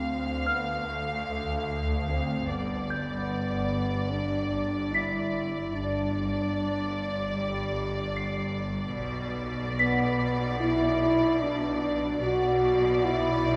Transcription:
0.00 2.45 D2 soft
0.00 2.45 D2 medium
0.00 2.45 D2 soft
0.00 0.44 C4 soft
0.00 2.45 F5 soft
0.46 0.87 B3 soft
0.46 2.86 F6 soft
0.86 2.08 A3 soft
2.09 2.49 C4 soft
2.48 5.72 G1 soft
2.48 5.73 G1 medium
2.48 5.72 G2 soft
2.48 4.11 B3 soft
2.48 5.69 D5 soft
2.90 5.29 G6 soft
4.11 4.92 D4 soft
4.93 5.73 E4 soft
4.93 7.32 B6 soft
5.73 8.94 G1 soft
5.73 8.94 G1 medium
5.73 8.94 G2 soft
5.73 7.18 D4 medium
5.73 8.93 D5 soft
7.35 8.54 G3 soft
8.16 10.56 C7 soft
8.96 12.21 B1 medium
8.96 12.18 B1 soft
8.96 12.18 B2 soft
8.96 12.18 D5 soft
9.78 10.55 B3 medium
9.78 12.18 B6 soft
10.60 11.41 E4 medium
11.40 12.22 D4 medium
12.21 13.56 B1 soft
12.21 13.56 B1 medium
12.21 13.56 B2 medium
12.21 13.01 F#4 medium
12.21 13.56 D5 soft
13.03 13.56 E4 medium

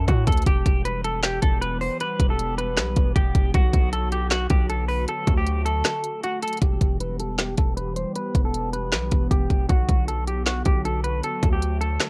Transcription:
0.08 0.26 A2 loud
0.08 0.24 F#4 medium
0.08 kick loud
0.08 closed hi-hat medium
0.27 0.46 D2 loud
0.27 0.43 A4 medium
0.27 kick loud
0.27 closed hi-hat medium
0.27 open hi-hat medium
0.32 closed hi-hat medium
0.37 closed hi-hat medium
0.42 closed hi-hat soft
0.46 0.65 E1 loud
0.46 3.51 E3 medium
0.46 3.51 G3 medium
0.46 5.04 B3 medium
0.46 3.51 G4 loud
0.46 0.83 G4 loud
0.46 kick loud
0.46 closed hi-hat medium
0.66 1.39 E1 loud
0.66 kick loud
0.66 closed hi-hat medium
0.85 1.01 B4 medium
0.85 closed hi-hat medium
1.04 1.20 A4 medium
1.04 closed hi-hat medium
1.23 1.39 G4 medium
1.23 snare loud
1.23 clap loud
1.23 closed hi-hat medium
1.42 1.89 E1 loud
1.42 1.58 A4 medium
1.42 kick loud
1.42 closed hi-hat medium
1.61 1.77 B4 medium
1.61 closed hi-hat medium
1.81 1.97 C5 medium
1.81 open hi-hat medium
2.00 2.28 B4 loud
2.00 closed hi-hat medium
2.20 2.79 E1 loud
2.20 kick loud
2.20 closed hi-hat medium
2.30 2.56 A4 medium
2.39 closed hi-hat medium
2.58 3.12 B4 medium
2.58 closed hi-hat medium
2.77 2.95 B1 loud
2.77 snare loud
2.77 clap loud
2.77 closed hi-hat medium
2.96 3.15 E1 loud
2.96 kick loud
2.96 closed hi-hat medium
3.16 3.34 E1 loud
3.16 3.52 G4 medium
3.16 kick loud
3.16 closed hi-hat medium
3.35 3.53 E1 loud
3.35 kick loud
3.35 closed hi-hat medium
3.54 3.73 B1 loud
3.54 5.06 D3 medium
3.54 6.59 F#3 medium
3.54 5.06 F#4 medium
3.54 3.90 F#4 loud
3.54 kick loud
3.54 closed hi-hat medium
3.73 4.47 B1 loud
3.73 kick medium
3.73 closed hi-hat medium
3.93 4.08 A4 medium
3.93 closed hi-hat medium
4.12 4.28 G4 medium
4.12 closed hi-hat medium
4.31 4.46 F#4 loud
4.31 snare loud
4.31 clap loud
4.31 closed hi-hat medium
4.50 5.06 B1 loud
4.50 4.66 G4 medium
4.50 kick loud
4.50 closed hi-hat medium
4.70 4.85 A4 medium
4.70 closed hi-hat medium
4.88 5.04 B4 medium
4.88 open hi-hat medium
5.08 6.60 D3 medium
5.08 6.60 A3 medium
5.08 6.60 F#4 medium
5.08 5.36 A4 medium
5.08 closed hi-hat medium
5.27 5.83 D2 loud
5.27 kick loud
5.27 closed hi-hat medium
5.37 5.64 G4 medium
5.47 closed hi-hat medium
5.65 6.20 A4 medium
5.65 closed hi-hat medium
5.85 snare loud
5.85 clap loud
5.85 closed hi-hat medium
6.04 closed hi-hat medium
6.24 6.39 F#4 medium
6.24 closed hi-hat medium
6.42 6.58 A4 medium
6.42 closed hi-hat medium
6.42 open hi-hat medium
6.48 closed hi-hat medium
6.53 closed hi-hat medium
6.57 closed hi-hat soft
6.62 6.80 E1 loud
6.62 9.66 E3 medium
6.62 9.66 G3 medium
6.62 11.19 B3 medium
6.62 9.66 G4 medium
6.62 6.98 G4 loud
6.62 kick loud
6.62 closed hi-hat medium
6.81 7.55 E1 loud
6.81 kick medium
6.81 closed hi-hat medium
7.00 7.16 B4 medium
7.00 closed hi-hat medium
7.20 7.35 A4 medium
7.20 closed hi-hat medium
7.39 7.54 G4 medium
7.39 snare loud
7.39 clap medium
7.39 closed hi-hat medium
7.58 8.05 E1 loud
7.58 7.73 A4 medium
7.58 kick loud
7.58 closed hi-hat medium
7.77 7.93 B4 medium
7.77 closed hi-hat medium
7.96 8.12 C5 medium
7.96 closed hi-hat medium
8.16 8.43 B4 loud
8.16 closed hi-hat medium
8.35 8.94 E1 loud
8.35 kick medium
8.35 closed hi-hat medium
8.45 8.72 A4 medium
8.54 closed hi-hat medium
8.73 9.28 B4 medium
8.73 closed hi-hat medium
8.93 9.11 B1 loud
8.93 snare loud
8.93 clap medium
8.93 closed hi-hat medium
9.11 9.30 E1 loud
9.11 kick loud
9.11 closed hi-hat medium
9.31 9.49 E1 loud
9.31 9.67 G4 medium
9.31 kick medium
9.31 closed hi-hat medium
9.50 9.69 E1 loud
9.50 kick medium
9.50 closed hi-hat medium
9.69 9.88 B1 loud
9.69 12.10 D3 medium
9.69 12.10 F#3 medium
9.69 12.10 F#4 medium
9.69 10.06 F#4 loud
9.69 kick loud
9.69 closed hi-hat medium
9.89 10.63 B1 loud
9.89 kick loud
9.89 closed hi-hat medium
10.08 10.24 A4 medium
10.08 closed hi-hat medium
10.27 10.43 G4 medium
10.27 closed hi-hat medium
10.46 10.62 F#4 medium
10.46 snare loud
10.46 clap medium
10.46 closed hi-hat medium
10.65 11.21 B1 loud
10.65 10.81 G4 medium
10.65 kick loud
10.65 closed hi-hat medium
10.85 11.01 A4 medium
10.85 closed hi-hat medium
11.04 11.19 B4 medium
11.04 closed hi-hat medium
11.23 12.10 A3 medium
11.23 11.51 A4 medium
11.23 closed hi-hat medium
11.43 11.98 D2 loud
11.43 kick loud
11.43 closed hi-hat medium
11.53 11.79 G4 medium
11.62 closed hi-hat medium
11.81 12.10 A4 medium
11.81 closed hi-hat medium
12.00 snare loud
12.00 clap medium
12.00 closed hi-hat medium

